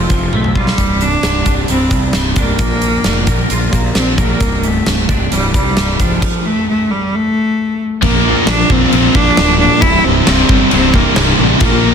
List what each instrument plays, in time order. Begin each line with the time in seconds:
Already playing: cello F3, clean electric guitar A3 C4 F4
0.10 fingered electric bass F1, clean electric guitar F3, kick, closed hi-hat
0.33 fingered electric bass B1, clean electric guitar A3, cello A3, high tom
0.44 mid tom
0.55 cello G3, clean electric guitar F4, kick
0.67 snare
0.78 fingered electric bass C1, clean electric guitar C2, kick, closed hi-hat
1.01 cello D4, closed hi-hat
1.23 fingered electric bass C1, clean electric guitar C3, snare, closed hi-hat
1.45 fingered electric bass C1, clean electric guitar D4, kick, closed hi-hat
1.68 fingered electric bass C1, clean electric guitar G3, cello C4, closed hi-hat
1.91 fingered electric bass C2, clean electric guitar G2, kick, closed hi-hat
2.13 fingered electric bass C1, clean electric guitar C3, snare, closed hi-hat
2.36 fingered electric bass C1, cello A#3, clean electric guitar D4, kick, closed hi-hat
2.59 fingered electric bass A#1, clean electric guitar A#2, kick, closed hi-hat
2.82 closed hi-hat
3.04 fingered electric bass F1, clean electric guitar D4, snare, closed hi-hat
3.27 fingered electric bass A#1, clean electric guitar A#4, kick, closed hi-hat
3.50 fingered electric bass A#1, clean electric guitar F4, closed hi-hat
3.73 fingered electric bass A#1, clean electric guitar A#3, kick, closed hi-hat
3.95 fingered electric bass A#1, cello C4, clean electric guitar D4, snare, closed hi-hat
4.18 cello A#3, clean electric guitar A#4, kick, closed hi-hat
4.40 fingered electric bass C1, clean electric guitar C2, kick, closed hi-hat
4.63 cello A3, closed hi-hat
4.85 fingered electric bass C1, clean electric guitar C3, snare, closed hi-hat
5.09 fingered electric bass C1, clean electric guitar D4, kick, closed hi-hat
5.32 fingered electric bass C1, clean electric guitar G3, cello G3, closed hi-hat
5.54 fingered electric bass C2, clean electric guitar G2, cello G3, kick, closed hi-hat
5.77 fingered electric bass C1, clean electric guitar C3, snare, closed hi-hat
5.99 fingered electric bass C1, cello F3, clean electric guitar D4, kick, closed hi-hat
6.22 kick, crash
6.46 cello A3
6.69 cello A3
6.91 cello G3
7.15 cello A3
8.02 fingered electric bass A#1, overdriven electric guitar A#2 F3 A#3, cello A#3, distorted electric guitar F4 A#4, kick, crash
8.25 overdriven electric guitar A#2 F3 A#3
8.47 fingered electric bass A#1, overdriven electric guitar A#2 F3 A#3, cello D4, snare, crash
8.69 fingered electric bass A#1, overdriven electric guitar A#2 F3 A#3, cello C4, distorted electric guitar F4 A#4, kick
8.92 fingered electric bass A#1, overdriven electric guitar A#2 F3 A#3, crash
9.15 fingered electric bass A#1, overdriven electric guitar A#2 F3 A#3, cello D4, kick
9.37 fingered electric bass D1, overdriven electric guitar A#2 F3 A#3, snare, crash
9.60 overdriven electric guitar A#2 F3 A#3, cello D4
9.81 fingered electric bass C1, overdriven electric guitar C2 G2 C3, distorted electric guitar G3 E4, cello E4, kick, crash
10.04 fingered electric bass C1, overdriven electric guitar C2 G2 C3, cello C4
10.27 fingered electric bass C1, overdriven electric guitar C2 G2 C3, snare, crash
10.48 fingered electric bass G1, overdriven electric guitar C2 G2 C3, distorted electric guitar G3 E4, kick
10.71 fingered electric bass C1, overdriven electric guitar C2 G2 C3, cello C4, crash
10.94 overdriven electric guitar C2 G2 C3, cello A#3, kick
11.16 fingered electric bass C1, overdriven electric guitar C2 G2 C3, snare, crash
11.38 fingered electric bass A1, overdriven electric guitar C2 G2 C3
11.60 fingered electric bass A#1, overdriven electric guitar A#2 F3 A#3, cello A#3, distorted electric guitar F4 A#4, kick, crash
11.83 overdriven electric guitar A#2 F3 A#3